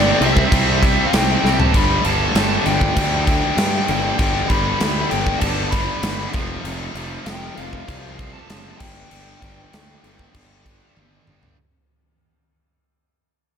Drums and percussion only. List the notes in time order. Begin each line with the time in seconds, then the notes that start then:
0.22 crash
0.37 kick
0.52 kick, crash
0.83 kick, crash
1.13 snare, crash
1.45 snare
1.60 floor tom
1.74 kick, crash
2.05 crash
2.35 snare, crash
2.66 crash
2.81 kick
2.97 kick, crash
3.27 kick, crash
3.58 snare, crash
3.88 crash
4.19 kick, crash
4.50 kick, crash
4.80 snare, crash
5.11 crash
5.27 kick
5.41 kick, crash
5.72 kick, crash
6.03 snare, crash
6.33 kick, crash
6.65 crash
6.95 crash
7.26 snare, crash
7.57 crash
7.73 kick
7.88 kick, crash
8.19 kick, crash
8.50 snare, crash
8.80 kick, crash
9.11 crash
9.42 kick, crash
9.73 snare, crash
10.04 crash
10.19 kick
10.35 kick, crash
10.66 kick, crash
10.97 high tom
11.27 mid tom
11.43 floor tom